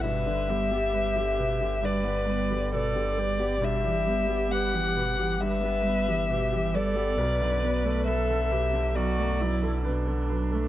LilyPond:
<<
  \new Staff \with { instrumentName = "Violin" } { \time 4/4 \key b \minor \tempo 4 = 67 e''2 d''4 d''4 | e''4 fis''4 e''4. d''8~ | d''4 e''4 d''4 r4 | }
  \new Staff \with { instrumentName = "Viola" } { \time 4/4 \key b \minor b'8 g'4. b'4 a'8 g'8~ | g'2 b'4 g'8 a'8 | b'4 a'8 g'8 fis'8 e'8 d'4 | }
  \new Staff \with { instrumentName = "Grand piano" } { \time 4/4 \key b \minor g,16 d16 b16 g'16 b'16 g'16 b'16 g'16 g,16 d16 b16 g'16 b'16 g'16 b'16 g'16 | g,16 g16 b16 g'16 b'16 g'16 b'16 g'16 g,16 g16 b16 g'16 b'16 g'16 b'16 g'16 | b,,16 fis,16 b16 a'16 b'16 a'16 b'16 a'16 b,,16 fis,16 b16 a'16 b'16 a'16 b'16 a'16 | }
  \new Staff \with { instrumentName = "Cello" } { \clef bass \time 4/4 \key b \minor b,16 d16 g16 b16 g16 d16 b,16 d16 g16 b16 g16 d16 b,16 d16 g16 b16 | b,16 e16 g16 b16 g16 e16 b,16 e16 g16 b16 g16 e16 b,16 e16 g16 b16 | b,16 d16 fis16 a16 fis16 d16 b,16 d16 fis16 a16 fis16 d16 b,16 d16 fis16 a16 | }
  \new Staff \with { instrumentName = "Sub bass" } { \clef bass \time 4/4 \key b \minor g,,1 | g,,1 | b,,1 | }
>>